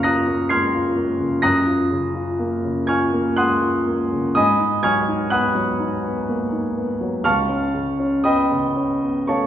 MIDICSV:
0, 0, Header, 1, 2, 480
1, 0, Start_track
1, 0, Tempo, 936037
1, 731, Time_signature, 3, 2, 24, 8
1, 732, Tempo, 969305
1, 3612, Tempo, 1027397
1, 4651, End_track
2, 0, Start_track
2, 0, Title_t, "Grand piano"
2, 0, Program_c, 0, 0
2, 0, Control_c, 0, 64, 127
2, 0, Note_on_c, 0, 42, 55
2, 0, Note_on_c, 0, 49, 39
2, 0, Note_on_c, 0, 58, 43
2, 0, Note_on_c, 0, 65, 45
2, 0, Note_on_c, 0, 73, 64
2, 0, Note_on_c, 0, 77, 71
2, 0, Note_on_c, 0, 78, 63
2, 0, Note_on_c, 0, 82, 66
2, 0, Note_on_c, 0, 85, 69
2, 0, Note_on_c, 0, 89, 94
2, 16, Note_on_c, 0, 94, 83
2, 21, Note_on_c, 0, 87, 68
2, 21, Note_on_c, 0, 90, 63
2, 23, Note_off_c, 0, 65, 0
2, 23, Note_off_c, 0, 82, 0
2, 23, Note_on_c, 0, 65, 37
2, 23, Note_on_c, 0, 82, 60
2, 87, Note_off_c, 0, 49, 0
2, 136, Note_off_c, 0, 58, 0
2, 136, Note_on_c, 0, 58, 41
2, 209, Note_off_c, 0, 65, 0
2, 240, Note_off_c, 0, 87, 0
2, 240, Note_off_c, 0, 90, 0
2, 241, Note_off_c, 0, 82, 0
2, 253, Note_on_c, 0, 96, 87
2, 254, Note_off_c, 0, 94, 0
2, 257, Note_off_c, 0, 89, 0
2, 257, Note_on_c, 0, 89, 71
2, 257, Note_on_c, 0, 92, 66
2, 258, Note_on_c, 0, 84, 64
2, 259, Note_on_c, 0, 56, 34
2, 326, Note_off_c, 0, 58, 0
2, 375, Note_off_c, 0, 56, 0
2, 380, Note_on_c, 0, 65, 40
2, 493, Note_on_c, 0, 58, 40
2, 567, Note_off_c, 0, 65, 0
2, 613, Note_on_c, 0, 49, 34
2, 684, Note_off_c, 0, 58, 0
2, 709, Note_off_c, 0, 42, 0
2, 713, Note_off_c, 0, 89, 0
2, 713, Note_off_c, 0, 92, 0
2, 714, Note_off_c, 0, 84, 0
2, 729, Note_on_c, 0, 94, 98
2, 732, Note_off_c, 0, 49, 0
2, 732, Note_off_c, 0, 96, 0
2, 732, Note_on_c, 0, 42, 50
2, 733, Note_on_c, 0, 87, 70
2, 734, Note_on_c, 0, 82, 72
2, 734, Note_on_c, 0, 90, 65
2, 740, Control_c, 0, 64, 0
2, 743, Note_off_c, 0, 73, 0
2, 743, Note_off_c, 0, 78, 0
2, 744, Note_off_c, 0, 77, 0
2, 744, Note_off_c, 0, 85, 0
2, 810, Control_c, 0, 64, 127
2, 849, Note_on_c, 0, 65, 41
2, 970, Note_on_c, 0, 49, 42
2, 1041, Note_off_c, 0, 65, 0
2, 1088, Note_on_c, 0, 65, 44
2, 1163, Note_off_c, 0, 49, 0
2, 1210, Note_on_c, 0, 58, 44
2, 1282, Note_off_c, 0, 65, 0
2, 1329, Note_on_c, 0, 49, 39
2, 1403, Note_off_c, 0, 58, 0
2, 1433, Note_off_c, 0, 87, 0
2, 1434, Note_off_c, 0, 82, 0
2, 1434, Note_off_c, 0, 90, 0
2, 1446, Note_on_c, 0, 92, 78
2, 1451, Note_off_c, 0, 94, 0
2, 1452, Note_on_c, 0, 85, 62
2, 1453, Note_on_c, 0, 65, 44
2, 1453, Note_on_c, 0, 80, 61
2, 1455, Note_on_c, 0, 89, 63
2, 1524, Note_off_c, 0, 49, 0
2, 1575, Note_on_c, 0, 58, 42
2, 1647, Note_off_c, 0, 65, 0
2, 1678, Note_off_c, 0, 80, 0
2, 1678, Note_off_c, 0, 85, 0
2, 1679, Note_off_c, 0, 89, 0
2, 1692, Note_off_c, 0, 92, 0
2, 1692, Note_on_c, 0, 90, 92
2, 1695, Note_on_c, 0, 84, 71
2, 1698, Note_on_c, 0, 56, 39
2, 1698, Note_on_c, 0, 78, 59
2, 1698, Note_on_c, 0, 87, 65
2, 1769, Note_off_c, 0, 58, 0
2, 1817, Note_on_c, 0, 65, 41
2, 1818, Note_off_c, 0, 56, 0
2, 1943, Note_on_c, 0, 58, 42
2, 2012, Note_off_c, 0, 65, 0
2, 2066, Note_on_c, 0, 49, 36
2, 2135, Note_off_c, 0, 58, 0
2, 2162, Note_off_c, 0, 42, 0
2, 2162, Note_off_c, 0, 84, 0
2, 2163, Note_off_c, 0, 78, 0
2, 2163, Note_off_c, 0, 87, 0
2, 2179, Note_on_c, 0, 87, 95
2, 2180, Note_off_c, 0, 90, 0
2, 2184, Note_off_c, 0, 49, 0
2, 2186, Note_on_c, 0, 44, 52
2, 2187, Note_on_c, 0, 75, 67
2, 2188, Note_on_c, 0, 80, 67
2, 2188, Note_on_c, 0, 83, 68
2, 2190, Control_c, 0, 64, 0
2, 2268, Control_c, 0, 64, 127
2, 2301, Note_on_c, 0, 63, 41
2, 2407, Note_off_c, 0, 75, 0
2, 2407, Note_off_c, 0, 80, 0
2, 2407, Note_off_c, 0, 83, 0
2, 2417, Note_on_c, 0, 92, 99
2, 2419, Note_off_c, 0, 87, 0
2, 2420, Note_on_c, 0, 80, 69
2, 2421, Note_on_c, 0, 85, 63
2, 2422, Note_on_c, 0, 89, 64
2, 2423, Note_on_c, 0, 54, 41
2, 2491, Note_off_c, 0, 63, 0
2, 2542, Note_on_c, 0, 63, 43
2, 2611, Note_off_c, 0, 54, 0
2, 2640, Note_off_c, 0, 80, 0
2, 2640, Note_off_c, 0, 85, 0
2, 2640, Note_off_c, 0, 89, 0
2, 2651, Note_on_c, 0, 90, 95
2, 2654, Note_off_c, 0, 92, 0
2, 2657, Note_on_c, 0, 78, 69
2, 2657, Note_on_c, 0, 87, 64
2, 2658, Note_on_c, 0, 59, 45
2, 2659, Note_on_c, 0, 83, 68
2, 2729, Note_off_c, 0, 63, 0
2, 2773, Note_on_c, 0, 54, 42
2, 2845, Note_off_c, 0, 59, 0
2, 2875, Note_off_c, 0, 78, 0
2, 2875, Note_off_c, 0, 87, 0
2, 2876, Note_off_c, 0, 83, 0
2, 2889, Note_off_c, 0, 90, 0
2, 2895, Note_on_c, 0, 63, 48
2, 2962, Note_off_c, 0, 54, 0
2, 3018, Note_on_c, 0, 59, 46
2, 3083, Note_off_c, 0, 63, 0
2, 3138, Note_on_c, 0, 58, 37
2, 3206, Note_off_c, 0, 59, 0
2, 3254, Note_off_c, 0, 58, 0
2, 3255, Note_on_c, 0, 63, 39
2, 3377, Note_on_c, 0, 59, 42
2, 3445, Note_off_c, 0, 63, 0
2, 3495, Note_on_c, 0, 54, 40
2, 3567, Note_off_c, 0, 59, 0
2, 3594, Note_off_c, 0, 44, 0
2, 3611, Note_on_c, 0, 89, 102
2, 3614, Note_off_c, 0, 54, 0
2, 3615, Note_on_c, 0, 85, 76
2, 3616, Note_on_c, 0, 77, 69
2, 3616, Note_on_c, 0, 81, 76
2, 3618, Note_on_c, 0, 37, 52
2, 3621, Control_c, 0, 64, 0
2, 3693, Control_c, 0, 64, 127
2, 3727, Note_on_c, 0, 61, 46
2, 3845, Note_on_c, 0, 49, 43
2, 3915, Note_off_c, 0, 61, 0
2, 3964, Note_on_c, 0, 61, 44
2, 4034, Note_off_c, 0, 49, 0
2, 4064, Note_off_c, 0, 85, 0
2, 4065, Note_off_c, 0, 77, 0
2, 4065, Note_off_c, 0, 81, 0
2, 4076, Note_on_c, 0, 87, 84
2, 4079, Note_on_c, 0, 59, 43
2, 4081, Note_off_c, 0, 89, 0
2, 4082, Note_on_c, 0, 75, 71
2, 4082, Note_on_c, 0, 79, 68
2, 4082, Note_on_c, 0, 83, 70
2, 4154, Note_off_c, 0, 61, 0
2, 4204, Note_on_c, 0, 49, 38
2, 4272, Note_off_c, 0, 59, 0
2, 4322, Note_on_c, 0, 61, 41
2, 4396, Note_off_c, 0, 49, 0
2, 4446, Note_on_c, 0, 59, 41
2, 4519, Note_off_c, 0, 61, 0
2, 4550, Note_off_c, 0, 75, 0
2, 4550, Note_off_c, 0, 79, 0
2, 4550, Note_off_c, 0, 83, 0
2, 4561, Note_on_c, 0, 85, 72
2, 4566, Note_off_c, 0, 87, 0
2, 4566, Note_on_c, 0, 73, 55
2, 4567, Note_on_c, 0, 57, 33
2, 4567, Note_on_c, 0, 77, 54
2, 4567, Note_on_c, 0, 81, 57
2, 4645, Note_off_c, 0, 59, 0
2, 4651, Note_off_c, 0, 37, 0
2, 4651, Note_off_c, 0, 57, 0
2, 4651, Note_off_c, 0, 73, 0
2, 4651, Note_off_c, 0, 77, 0
2, 4651, Note_off_c, 0, 81, 0
2, 4651, Note_off_c, 0, 85, 0
2, 4651, End_track
0, 0, End_of_file